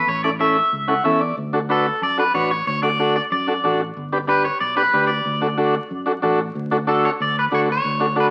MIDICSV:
0, 0, Header, 1, 4, 480
1, 0, Start_track
1, 0, Key_signature, 2, "major"
1, 0, Tempo, 323625
1, 116, Time_signature, 4, 2, 24, 8
1, 12316, End_track
2, 0, Start_track
2, 0, Title_t, "Clean electric guitar"
2, 0, Program_c, 0, 27
2, 125, Note_on_c, 0, 73, 99
2, 351, Note_off_c, 0, 73, 0
2, 357, Note_on_c, 0, 74, 96
2, 431, Note_off_c, 0, 74, 0
2, 601, Note_on_c, 0, 76, 89
2, 1800, Note_off_c, 0, 76, 0
2, 2541, Note_on_c, 0, 69, 81
2, 2977, Note_off_c, 0, 69, 0
2, 3015, Note_on_c, 0, 74, 92
2, 3231, Note_off_c, 0, 74, 0
2, 3255, Note_on_c, 0, 71, 82
2, 3475, Note_off_c, 0, 71, 0
2, 3481, Note_on_c, 0, 73, 86
2, 3704, Note_off_c, 0, 73, 0
2, 3725, Note_on_c, 0, 73, 87
2, 3945, Note_off_c, 0, 73, 0
2, 3965, Note_on_c, 0, 73, 94
2, 4186, Note_off_c, 0, 73, 0
2, 4198, Note_on_c, 0, 74, 94
2, 4665, Note_off_c, 0, 74, 0
2, 4683, Note_on_c, 0, 74, 87
2, 4757, Note_off_c, 0, 74, 0
2, 4925, Note_on_c, 0, 74, 83
2, 5592, Note_off_c, 0, 74, 0
2, 6367, Note_on_c, 0, 71, 86
2, 6587, Note_off_c, 0, 71, 0
2, 6598, Note_on_c, 0, 73, 88
2, 6822, Note_off_c, 0, 73, 0
2, 6830, Note_on_c, 0, 74, 90
2, 7066, Note_off_c, 0, 74, 0
2, 7072, Note_on_c, 0, 71, 87
2, 7518, Note_off_c, 0, 71, 0
2, 7524, Note_on_c, 0, 74, 88
2, 9161, Note_off_c, 0, 74, 0
2, 10211, Note_on_c, 0, 69, 76
2, 10428, Note_off_c, 0, 69, 0
2, 10457, Note_on_c, 0, 73, 78
2, 10531, Note_off_c, 0, 73, 0
2, 10705, Note_on_c, 0, 74, 82
2, 10915, Note_off_c, 0, 74, 0
2, 10960, Note_on_c, 0, 71, 79
2, 11034, Note_off_c, 0, 71, 0
2, 11191, Note_on_c, 0, 73, 84
2, 11265, Note_off_c, 0, 73, 0
2, 11450, Note_on_c, 0, 73, 91
2, 12094, Note_off_c, 0, 73, 0
2, 12166, Note_on_c, 0, 71, 83
2, 12240, Note_off_c, 0, 71, 0
2, 12316, End_track
3, 0, Start_track
3, 0, Title_t, "Transistor combo organ"
3, 0, Program_c, 1, 18
3, 355, Note_on_c, 1, 61, 62
3, 357, Note_on_c, 1, 64, 59
3, 361, Note_on_c, 1, 69, 66
3, 439, Note_off_c, 1, 61, 0
3, 441, Note_off_c, 1, 64, 0
3, 443, Note_off_c, 1, 69, 0
3, 588, Note_on_c, 1, 61, 73
3, 594, Note_on_c, 1, 64, 70
3, 602, Note_on_c, 1, 69, 76
3, 844, Note_off_c, 1, 61, 0
3, 847, Note_off_c, 1, 64, 0
3, 851, Note_off_c, 1, 69, 0
3, 1298, Note_on_c, 1, 61, 71
3, 1307, Note_on_c, 1, 78, 62
3, 1309, Note_on_c, 1, 64, 67
3, 1314, Note_on_c, 1, 69, 77
3, 1392, Note_off_c, 1, 61, 0
3, 1397, Note_off_c, 1, 64, 0
3, 1399, Note_off_c, 1, 69, 0
3, 1535, Note_off_c, 1, 78, 0
3, 1541, Note_on_c, 1, 61, 70
3, 1551, Note_on_c, 1, 64, 70
3, 1551, Note_on_c, 1, 76, 67
3, 1557, Note_on_c, 1, 69, 84
3, 1777, Note_off_c, 1, 76, 0
3, 1787, Note_on_c, 1, 74, 65
3, 1801, Note_off_c, 1, 61, 0
3, 1806, Note_off_c, 1, 64, 0
3, 1809, Note_off_c, 1, 69, 0
3, 2016, Note_off_c, 1, 74, 0
3, 2270, Note_on_c, 1, 62, 73
3, 2274, Note_on_c, 1, 66, 70
3, 2282, Note_on_c, 1, 69, 83
3, 2358, Note_off_c, 1, 62, 0
3, 2360, Note_off_c, 1, 66, 0
3, 2364, Note_off_c, 1, 69, 0
3, 2509, Note_on_c, 1, 62, 76
3, 2518, Note_on_c, 1, 71, 77
3, 2519, Note_on_c, 1, 66, 66
3, 2766, Note_off_c, 1, 62, 0
3, 2770, Note_off_c, 1, 71, 0
3, 2771, Note_off_c, 1, 66, 0
3, 3228, Note_on_c, 1, 62, 58
3, 3230, Note_on_c, 1, 66, 57
3, 3238, Note_on_c, 1, 69, 68
3, 3318, Note_off_c, 1, 62, 0
3, 3318, Note_off_c, 1, 66, 0
3, 3323, Note_off_c, 1, 69, 0
3, 3471, Note_on_c, 1, 62, 64
3, 3476, Note_on_c, 1, 66, 58
3, 3484, Note_on_c, 1, 71, 69
3, 3727, Note_off_c, 1, 62, 0
3, 3730, Note_off_c, 1, 66, 0
3, 3734, Note_off_c, 1, 71, 0
3, 4190, Note_on_c, 1, 62, 66
3, 4194, Note_on_c, 1, 66, 57
3, 4204, Note_on_c, 1, 69, 71
3, 4279, Note_off_c, 1, 62, 0
3, 4281, Note_off_c, 1, 66, 0
3, 4286, Note_off_c, 1, 69, 0
3, 4436, Note_on_c, 1, 62, 74
3, 4443, Note_on_c, 1, 66, 66
3, 4446, Note_on_c, 1, 69, 83
3, 4690, Note_off_c, 1, 62, 0
3, 4694, Note_off_c, 1, 66, 0
3, 4695, Note_off_c, 1, 69, 0
3, 5148, Note_on_c, 1, 62, 61
3, 5158, Note_on_c, 1, 66, 53
3, 5163, Note_on_c, 1, 69, 70
3, 5238, Note_off_c, 1, 62, 0
3, 5243, Note_off_c, 1, 66, 0
3, 5245, Note_off_c, 1, 69, 0
3, 5395, Note_on_c, 1, 62, 61
3, 5408, Note_on_c, 1, 69, 74
3, 5410, Note_on_c, 1, 66, 61
3, 5649, Note_off_c, 1, 62, 0
3, 5656, Note_off_c, 1, 69, 0
3, 5657, Note_off_c, 1, 66, 0
3, 6117, Note_on_c, 1, 62, 72
3, 6120, Note_on_c, 1, 67, 69
3, 6124, Note_on_c, 1, 71, 80
3, 6202, Note_off_c, 1, 62, 0
3, 6204, Note_off_c, 1, 67, 0
3, 6206, Note_off_c, 1, 71, 0
3, 6340, Note_on_c, 1, 62, 74
3, 6352, Note_on_c, 1, 67, 63
3, 6355, Note_on_c, 1, 71, 83
3, 6602, Note_off_c, 1, 62, 0
3, 6608, Note_off_c, 1, 67, 0
3, 6609, Note_off_c, 1, 71, 0
3, 7062, Note_on_c, 1, 62, 64
3, 7073, Note_on_c, 1, 71, 72
3, 7074, Note_on_c, 1, 67, 57
3, 7155, Note_off_c, 1, 62, 0
3, 7160, Note_off_c, 1, 71, 0
3, 7161, Note_off_c, 1, 67, 0
3, 7320, Note_on_c, 1, 62, 65
3, 7323, Note_on_c, 1, 67, 63
3, 7330, Note_on_c, 1, 71, 72
3, 7571, Note_off_c, 1, 62, 0
3, 7573, Note_off_c, 1, 67, 0
3, 7576, Note_off_c, 1, 71, 0
3, 8027, Note_on_c, 1, 62, 64
3, 8032, Note_on_c, 1, 66, 55
3, 8038, Note_on_c, 1, 69, 71
3, 8117, Note_off_c, 1, 62, 0
3, 8119, Note_off_c, 1, 66, 0
3, 8123, Note_off_c, 1, 69, 0
3, 8267, Note_on_c, 1, 66, 83
3, 8269, Note_on_c, 1, 62, 85
3, 8277, Note_on_c, 1, 69, 91
3, 8525, Note_off_c, 1, 66, 0
3, 8526, Note_off_c, 1, 62, 0
3, 8530, Note_off_c, 1, 69, 0
3, 8985, Note_on_c, 1, 62, 75
3, 8995, Note_on_c, 1, 66, 71
3, 8999, Note_on_c, 1, 69, 75
3, 9076, Note_off_c, 1, 62, 0
3, 9080, Note_off_c, 1, 66, 0
3, 9083, Note_off_c, 1, 69, 0
3, 9228, Note_on_c, 1, 62, 82
3, 9238, Note_on_c, 1, 66, 68
3, 9242, Note_on_c, 1, 69, 88
3, 9485, Note_off_c, 1, 62, 0
3, 9490, Note_off_c, 1, 66, 0
3, 9492, Note_off_c, 1, 69, 0
3, 9956, Note_on_c, 1, 62, 80
3, 9960, Note_on_c, 1, 66, 68
3, 9963, Note_on_c, 1, 69, 85
3, 10041, Note_off_c, 1, 62, 0
3, 10043, Note_off_c, 1, 66, 0
3, 10044, Note_off_c, 1, 69, 0
3, 10190, Note_on_c, 1, 62, 74
3, 10194, Note_on_c, 1, 66, 67
3, 10197, Note_on_c, 1, 69, 83
3, 10529, Note_off_c, 1, 62, 0
3, 10531, Note_off_c, 1, 66, 0
3, 10532, Note_off_c, 1, 69, 0
3, 11146, Note_on_c, 1, 62, 64
3, 11151, Note_on_c, 1, 66, 58
3, 11153, Note_on_c, 1, 69, 76
3, 11403, Note_off_c, 1, 62, 0
3, 11405, Note_off_c, 1, 66, 0
3, 11407, Note_off_c, 1, 69, 0
3, 11864, Note_on_c, 1, 62, 62
3, 11873, Note_on_c, 1, 66, 59
3, 11875, Note_on_c, 1, 69, 69
3, 11954, Note_off_c, 1, 62, 0
3, 11958, Note_off_c, 1, 66, 0
3, 11959, Note_off_c, 1, 69, 0
3, 12100, Note_on_c, 1, 62, 78
3, 12103, Note_on_c, 1, 66, 67
3, 12107, Note_on_c, 1, 69, 86
3, 12316, Note_off_c, 1, 62, 0
3, 12316, Note_off_c, 1, 66, 0
3, 12316, Note_off_c, 1, 69, 0
3, 12316, End_track
4, 0, Start_track
4, 0, Title_t, "Fingered electric bass"
4, 0, Program_c, 2, 33
4, 104, Note_on_c, 2, 33, 101
4, 877, Note_off_c, 2, 33, 0
4, 1076, Note_on_c, 2, 37, 85
4, 1461, Note_off_c, 2, 37, 0
4, 1558, Note_on_c, 2, 40, 91
4, 1942, Note_off_c, 2, 40, 0
4, 2037, Note_on_c, 2, 38, 93
4, 2806, Note_off_c, 2, 38, 0
4, 2993, Note_on_c, 2, 42, 83
4, 3379, Note_off_c, 2, 42, 0
4, 3476, Note_on_c, 2, 33, 87
4, 3862, Note_off_c, 2, 33, 0
4, 3960, Note_on_c, 2, 38, 95
4, 4728, Note_off_c, 2, 38, 0
4, 4917, Note_on_c, 2, 42, 91
4, 5302, Note_off_c, 2, 42, 0
4, 5398, Note_on_c, 2, 33, 88
4, 5783, Note_off_c, 2, 33, 0
4, 5883, Note_on_c, 2, 31, 99
4, 6650, Note_off_c, 2, 31, 0
4, 6834, Note_on_c, 2, 35, 81
4, 7220, Note_off_c, 2, 35, 0
4, 7318, Note_on_c, 2, 38, 95
4, 7703, Note_off_c, 2, 38, 0
4, 7794, Note_on_c, 2, 38, 105
4, 8564, Note_off_c, 2, 38, 0
4, 8761, Note_on_c, 2, 42, 79
4, 9144, Note_off_c, 2, 42, 0
4, 9242, Note_on_c, 2, 33, 92
4, 9624, Note_off_c, 2, 33, 0
4, 9720, Note_on_c, 2, 38, 93
4, 10486, Note_off_c, 2, 38, 0
4, 10683, Note_on_c, 2, 38, 87
4, 11064, Note_off_c, 2, 38, 0
4, 11153, Note_on_c, 2, 38, 86
4, 11538, Note_off_c, 2, 38, 0
4, 11636, Note_on_c, 2, 38, 97
4, 12316, Note_off_c, 2, 38, 0
4, 12316, End_track
0, 0, End_of_file